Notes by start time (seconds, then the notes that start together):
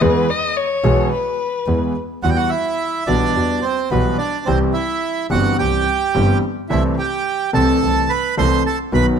0.01 E2 E3 G#3 B3 G#4 B4
0.31 D#5
0.57 C#5
0.84 B1 B2 E3 G#3 B3 G#4
1.13 B4
1.66 E2 E3 G#3 B3 G#4
2.23 E2 E3 G3 B3 F#4 F#5
2.30 G5
2.36 F#4 F#5
2.50 E4 E5
3.07 B1 B2 E3 G3 B3 D4 F#4 D5
3.35 E2 E3 G3 B3 F#4
3.62 C4 C5
3.90 B1 B2 E3 G3 B3 F#4 B4
4.18 D4 D5
4.46 C2 C3 E3 G3 C4 G4 C5
4.74 E4 E5
5.30 G1 G2 E3 G3 C4 F#4 G4 F#5
5.59 C2 C3 E3 G3 C4 G4 G5
6.14 G1 G2 E3 G3 C4 G4
6.69 C2 C3 E3 A3 C4 E4 A4 E5
6.98 G4 G5
7.53 C2 C3 E3 A3 C4 A4 A5
7.82 C2 C3 E3 A3 C4 A4
8.10 B4 B5
8.37 C2 C3 E3 A3 C4 A4 C5 C6
8.66 A4 A5
8.92 B1 B2 D#3 F#3 B3 F#4 B4 B5